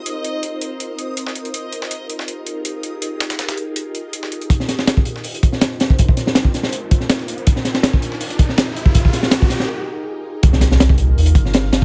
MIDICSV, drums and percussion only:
0, 0, Header, 1, 2, 480
1, 0, Start_track
1, 0, Key_signature, -3, "minor"
1, 0, Tempo, 370370
1, 75, Time_signature, 4, 2, 24, 8
1, 15352, End_track
2, 0, Start_track
2, 0, Title_t, "Drums"
2, 77, Note_on_c, 9, 42, 87
2, 207, Note_off_c, 9, 42, 0
2, 317, Note_on_c, 9, 42, 64
2, 447, Note_off_c, 9, 42, 0
2, 556, Note_on_c, 9, 42, 82
2, 686, Note_off_c, 9, 42, 0
2, 796, Note_on_c, 9, 42, 68
2, 926, Note_off_c, 9, 42, 0
2, 1038, Note_on_c, 9, 42, 83
2, 1168, Note_off_c, 9, 42, 0
2, 1277, Note_on_c, 9, 42, 63
2, 1406, Note_off_c, 9, 42, 0
2, 1516, Note_on_c, 9, 42, 85
2, 1640, Note_on_c, 9, 38, 52
2, 1646, Note_off_c, 9, 42, 0
2, 1756, Note_on_c, 9, 42, 66
2, 1769, Note_off_c, 9, 38, 0
2, 1880, Note_off_c, 9, 42, 0
2, 1880, Note_on_c, 9, 42, 42
2, 1995, Note_off_c, 9, 42, 0
2, 1995, Note_on_c, 9, 42, 85
2, 2125, Note_off_c, 9, 42, 0
2, 2235, Note_on_c, 9, 42, 66
2, 2361, Note_on_c, 9, 38, 55
2, 2365, Note_off_c, 9, 42, 0
2, 2475, Note_on_c, 9, 42, 86
2, 2490, Note_off_c, 9, 38, 0
2, 2604, Note_off_c, 9, 42, 0
2, 2716, Note_on_c, 9, 42, 67
2, 2839, Note_on_c, 9, 38, 47
2, 2845, Note_off_c, 9, 42, 0
2, 2954, Note_on_c, 9, 42, 81
2, 2969, Note_off_c, 9, 38, 0
2, 3084, Note_off_c, 9, 42, 0
2, 3195, Note_on_c, 9, 42, 66
2, 3324, Note_off_c, 9, 42, 0
2, 3433, Note_on_c, 9, 42, 87
2, 3563, Note_off_c, 9, 42, 0
2, 3672, Note_on_c, 9, 42, 64
2, 3802, Note_off_c, 9, 42, 0
2, 3913, Note_on_c, 9, 42, 86
2, 4042, Note_off_c, 9, 42, 0
2, 4153, Note_on_c, 9, 38, 104
2, 4153, Note_on_c, 9, 42, 78
2, 4277, Note_off_c, 9, 38, 0
2, 4277, Note_off_c, 9, 42, 0
2, 4277, Note_on_c, 9, 38, 101
2, 4277, Note_on_c, 9, 42, 76
2, 4392, Note_off_c, 9, 38, 0
2, 4392, Note_off_c, 9, 42, 0
2, 4392, Note_on_c, 9, 38, 100
2, 4392, Note_on_c, 9, 42, 75
2, 4517, Note_off_c, 9, 38, 0
2, 4517, Note_off_c, 9, 42, 0
2, 4517, Note_on_c, 9, 38, 99
2, 4517, Note_on_c, 9, 42, 75
2, 4632, Note_off_c, 9, 42, 0
2, 4632, Note_on_c, 9, 42, 67
2, 4647, Note_off_c, 9, 38, 0
2, 4762, Note_off_c, 9, 42, 0
2, 4873, Note_on_c, 9, 42, 81
2, 5003, Note_off_c, 9, 42, 0
2, 5115, Note_on_c, 9, 42, 68
2, 5245, Note_off_c, 9, 42, 0
2, 5355, Note_on_c, 9, 42, 86
2, 5480, Note_on_c, 9, 38, 52
2, 5484, Note_off_c, 9, 42, 0
2, 5597, Note_on_c, 9, 42, 65
2, 5610, Note_off_c, 9, 38, 0
2, 5722, Note_off_c, 9, 42, 0
2, 5722, Note_on_c, 9, 42, 42
2, 5831, Note_on_c, 9, 36, 116
2, 5837, Note_off_c, 9, 42, 0
2, 5837, Note_on_c, 9, 42, 88
2, 5843, Note_off_c, 9, 42, 0
2, 5843, Note_on_c, 9, 42, 90
2, 5961, Note_off_c, 9, 36, 0
2, 5962, Note_on_c, 9, 38, 53
2, 5972, Note_off_c, 9, 42, 0
2, 6072, Note_off_c, 9, 38, 0
2, 6072, Note_on_c, 9, 38, 52
2, 6072, Note_on_c, 9, 42, 69
2, 6078, Note_off_c, 9, 42, 0
2, 6078, Note_on_c, 9, 42, 67
2, 6202, Note_off_c, 9, 38, 0
2, 6202, Note_on_c, 9, 38, 52
2, 6204, Note_off_c, 9, 38, 0
2, 6204, Note_on_c, 9, 38, 57
2, 6208, Note_off_c, 9, 42, 0
2, 6316, Note_on_c, 9, 42, 86
2, 6317, Note_off_c, 9, 38, 0
2, 6317, Note_on_c, 9, 38, 103
2, 6319, Note_off_c, 9, 38, 0
2, 6319, Note_off_c, 9, 42, 0
2, 6319, Note_on_c, 9, 38, 112
2, 6319, Note_on_c, 9, 42, 87
2, 6441, Note_on_c, 9, 36, 99
2, 6449, Note_off_c, 9, 38, 0
2, 6449, Note_off_c, 9, 42, 0
2, 6549, Note_on_c, 9, 42, 69
2, 6558, Note_off_c, 9, 42, 0
2, 6558, Note_on_c, 9, 42, 68
2, 6570, Note_off_c, 9, 36, 0
2, 6683, Note_on_c, 9, 38, 49
2, 6687, Note_off_c, 9, 42, 0
2, 6787, Note_on_c, 9, 46, 81
2, 6799, Note_on_c, 9, 42, 85
2, 6813, Note_off_c, 9, 38, 0
2, 6916, Note_off_c, 9, 46, 0
2, 6928, Note_off_c, 9, 42, 0
2, 6929, Note_on_c, 9, 42, 40
2, 7036, Note_off_c, 9, 42, 0
2, 7036, Note_on_c, 9, 42, 64
2, 7037, Note_on_c, 9, 36, 84
2, 7038, Note_off_c, 9, 42, 0
2, 7038, Note_on_c, 9, 42, 68
2, 7161, Note_on_c, 9, 38, 47
2, 7166, Note_off_c, 9, 36, 0
2, 7168, Note_off_c, 9, 42, 0
2, 7273, Note_on_c, 9, 42, 85
2, 7276, Note_off_c, 9, 38, 0
2, 7276, Note_on_c, 9, 38, 122
2, 7277, Note_off_c, 9, 38, 0
2, 7277, Note_off_c, 9, 42, 0
2, 7277, Note_on_c, 9, 38, 116
2, 7277, Note_on_c, 9, 42, 89
2, 7407, Note_off_c, 9, 38, 0
2, 7407, Note_off_c, 9, 42, 0
2, 7517, Note_on_c, 9, 42, 68
2, 7526, Note_on_c, 9, 38, 92
2, 7646, Note_on_c, 9, 36, 95
2, 7647, Note_off_c, 9, 42, 0
2, 7656, Note_off_c, 9, 38, 0
2, 7757, Note_on_c, 9, 42, 89
2, 7760, Note_off_c, 9, 42, 0
2, 7760, Note_on_c, 9, 42, 90
2, 7765, Note_off_c, 9, 36, 0
2, 7765, Note_on_c, 9, 36, 98
2, 7886, Note_off_c, 9, 36, 0
2, 7886, Note_on_c, 9, 36, 99
2, 7890, Note_off_c, 9, 42, 0
2, 7996, Note_on_c, 9, 42, 66
2, 7997, Note_off_c, 9, 42, 0
2, 7997, Note_on_c, 9, 38, 39
2, 7997, Note_on_c, 9, 42, 68
2, 8016, Note_off_c, 9, 36, 0
2, 8126, Note_off_c, 9, 38, 0
2, 8127, Note_off_c, 9, 42, 0
2, 8127, Note_on_c, 9, 38, 62
2, 8231, Note_off_c, 9, 38, 0
2, 8231, Note_on_c, 9, 38, 113
2, 8238, Note_off_c, 9, 38, 0
2, 8238, Note_on_c, 9, 38, 115
2, 8238, Note_on_c, 9, 42, 88
2, 8353, Note_on_c, 9, 36, 91
2, 8367, Note_off_c, 9, 38, 0
2, 8367, Note_off_c, 9, 42, 0
2, 8478, Note_on_c, 9, 42, 68
2, 8481, Note_on_c, 9, 38, 48
2, 8483, Note_off_c, 9, 36, 0
2, 8486, Note_off_c, 9, 42, 0
2, 8486, Note_on_c, 9, 42, 60
2, 8596, Note_off_c, 9, 38, 0
2, 8596, Note_on_c, 9, 38, 55
2, 8615, Note_off_c, 9, 42, 0
2, 8713, Note_on_c, 9, 42, 80
2, 8719, Note_off_c, 9, 42, 0
2, 8719, Note_on_c, 9, 42, 86
2, 8726, Note_off_c, 9, 38, 0
2, 8848, Note_off_c, 9, 42, 0
2, 8957, Note_on_c, 9, 42, 70
2, 8959, Note_off_c, 9, 42, 0
2, 8959, Note_on_c, 9, 36, 91
2, 8959, Note_on_c, 9, 42, 67
2, 9077, Note_on_c, 9, 38, 42
2, 9088, Note_off_c, 9, 42, 0
2, 9089, Note_off_c, 9, 36, 0
2, 9195, Note_off_c, 9, 38, 0
2, 9195, Note_on_c, 9, 38, 110
2, 9196, Note_off_c, 9, 38, 0
2, 9196, Note_on_c, 9, 38, 118
2, 9196, Note_on_c, 9, 42, 88
2, 9323, Note_off_c, 9, 38, 0
2, 9323, Note_on_c, 9, 38, 53
2, 9326, Note_off_c, 9, 42, 0
2, 9437, Note_on_c, 9, 42, 68
2, 9439, Note_off_c, 9, 42, 0
2, 9439, Note_on_c, 9, 42, 68
2, 9453, Note_off_c, 9, 38, 0
2, 9563, Note_off_c, 9, 42, 0
2, 9563, Note_on_c, 9, 42, 44
2, 9677, Note_off_c, 9, 42, 0
2, 9677, Note_on_c, 9, 42, 93
2, 9678, Note_off_c, 9, 42, 0
2, 9678, Note_on_c, 9, 42, 91
2, 9682, Note_on_c, 9, 36, 112
2, 9798, Note_on_c, 9, 38, 45
2, 9807, Note_off_c, 9, 42, 0
2, 9811, Note_off_c, 9, 36, 0
2, 9911, Note_off_c, 9, 38, 0
2, 9911, Note_on_c, 9, 38, 54
2, 9917, Note_on_c, 9, 42, 64
2, 9918, Note_off_c, 9, 42, 0
2, 9918, Note_on_c, 9, 42, 68
2, 10034, Note_off_c, 9, 38, 0
2, 10034, Note_on_c, 9, 38, 49
2, 10042, Note_off_c, 9, 38, 0
2, 10042, Note_on_c, 9, 38, 59
2, 10047, Note_off_c, 9, 42, 0
2, 10152, Note_off_c, 9, 38, 0
2, 10152, Note_on_c, 9, 38, 118
2, 10154, Note_on_c, 9, 42, 83
2, 10157, Note_off_c, 9, 38, 0
2, 10157, Note_off_c, 9, 42, 0
2, 10157, Note_on_c, 9, 38, 115
2, 10157, Note_on_c, 9, 42, 88
2, 10283, Note_on_c, 9, 36, 93
2, 10287, Note_off_c, 9, 38, 0
2, 10287, Note_off_c, 9, 42, 0
2, 10397, Note_on_c, 9, 42, 71
2, 10402, Note_off_c, 9, 42, 0
2, 10402, Note_on_c, 9, 42, 69
2, 10412, Note_off_c, 9, 36, 0
2, 10522, Note_on_c, 9, 38, 50
2, 10532, Note_off_c, 9, 42, 0
2, 10634, Note_on_c, 9, 46, 81
2, 10636, Note_on_c, 9, 42, 87
2, 10652, Note_off_c, 9, 38, 0
2, 10761, Note_off_c, 9, 42, 0
2, 10761, Note_on_c, 9, 42, 43
2, 10763, Note_off_c, 9, 46, 0
2, 10874, Note_off_c, 9, 42, 0
2, 10874, Note_on_c, 9, 36, 97
2, 10874, Note_on_c, 9, 42, 71
2, 10877, Note_off_c, 9, 42, 0
2, 10877, Note_on_c, 9, 42, 68
2, 11004, Note_off_c, 9, 36, 0
2, 11004, Note_on_c, 9, 38, 48
2, 11007, Note_off_c, 9, 42, 0
2, 11117, Note_off_c, 9, 38, 0
2, 11117, Note_on_c, 9, 38, 115
2, 11117, Note_on_c, 9, 42, 90
2, 11120, Note_off_c, 9, 42, 0
2, 11120, Note_on_c, 9, 42, 87
2, 11121, Note_off_c, 9, 38, 0
2, 11121, Note_on_c, 9, 38, 124
2, 11249, Note_off_c, 9, 42, 0
2, 11250, Note_off_c, 9, 38, 0
2, 11358, Note_on_c, 9, 42, 64
2, 11477, Note_on_c, 9, 36, 106
2, 11487, Note_off_c, 9, 42, 0
2, 11596, Note_on_c, 9, 42, 82
2, 11599, Note_off_c, 9, 36, 0
2, 11599, Note_on_c, 9, 36, 103
2, 11726, Note_off_c, 9, 42, 0
2, 11728, Note_off_c, 9, 36, 0
2, 11728, Note_on_c, 9, 36, 88
2, 11834, Note_on_c, 9, 38, 40
2, 11836, Note_on_c, 9, 42, 71
2, 11839, Note_off_c, 9, 42, 0
2, 11839, Note_on_c, 9, 42, 67
2, 11858, Note_off_c, 9, 36, 0
2, 11960, Note_off_c, 9, 38, 0
2, 11960, Note_on_c, 9, 38, 58
2, 11969, Note_off_c, 9, 42, 0
2, 12069, Note_on_c, 9, 42, 81
2, 12070, Note_off_c, 9, 38, 0
2, 12070, Note_on_c, 9, 38, 109
2, 12074, Note_off_c, 9, 38, 0
2, 12074, Note_off_c, 9, 42, 0
2, 12074, Note_on_c, 9, 38, 120
2, 12074, Note_on_c, 9, 42, 89
2, 12204, Note_off_c, 9, 38, 0
2, 12204, Note_off_c, 9, 42, 0
2, 12208, Note_on_c, 9, 36, 101
2, 12309, Note_on_c, 9, 38, 51
2, 12314, Note_on_c, 9, 42, 73
2, 12321, Note_off_c, 9, 42, 0
2, 12321, Note_on_c, 9, 42, 70
2, 12338, Note_off_c, 9, 36, 0
2, 12438, Note_off_c, 9, 38, 0
2, 12438, Note_on_c, 9, 38, 52
2, 12450, Note_off_c, 9, 42, 0
2, 12567, Note_off_c, 9, 38, 0
2, 13517, Note_on_c, 9, 42, 86
2, 13521, Note_on_c, 9, 36, 103
2, 13646, Note_off_c, 9, 42, 0
2, 13646, Note_on_c, 9, 38, 54
2, 13651, Note_off_c, 9, 36, 0
2, 13751, Note_off_c, 9, 38, 0
2, 13751, Note_on_c, 9, 38, 51
2, 13752, Note_on_c, 9, 42, 70
2, 13881, Note_off_c, 9, 38, 0
2, 13881, Note_off_c, 9, 42, 0
2, 13886, Note_on_c, 9, 38, 55
2, 14000, Note_off_c, 9, 38, 0
2, 14000, Note_on_c, 9, 38, 127
2, 14000, Note_on_c, 9, 42, 92
2, 14119, Note_on_c, 9, 36, 101
2, 14129, Note_off_c, 9, 42, 0
2, 14130, Note_off_c, 9, 38, 0
2, 14227, Note_on_c, 9, 42, 64
2, 14249, Note_off_c, 9, 36, 0
2, 14357, Note_off_c, 9, 42, 0
2, 14487, Note_on_c, 9, 46, 78
2, 14592, Note_on_c, 9, 42, 45
2, 14617, Note_off_c, 9, 46, 0
2, 14710, Note_off_c, 9, 42, 0
2, 14710, Note_on_c, 9, 42, 65
2, 14711, Note_on_c, 9, 36, 100
2, 14839, Note_off_c, 9, 42, 0
2, 14841, Note_off_c, 9, 36, 0
2, 14844, Note_on_c, 9, 38, 44
2, 14949, Note_on_c, 9, 42, 92
2, 14963, Note_off_c, 9, 38, 0
2, 14963, Note_on_c, 9, 38, 122
2, 15078, Note_off_c, 9, 42, 0
2, 15093, Note_off_c, 9, 38, 0
2, 15197, Note_on_c, 9, 38, 105
2, 15198, Note_on_c, 9, 42, 82
2, 15327, Note_off_c, 9, 38, 0
2, 15328, Note_off_c, 9, 42, 0
2, 15352, End_track
0, 0, End_of_file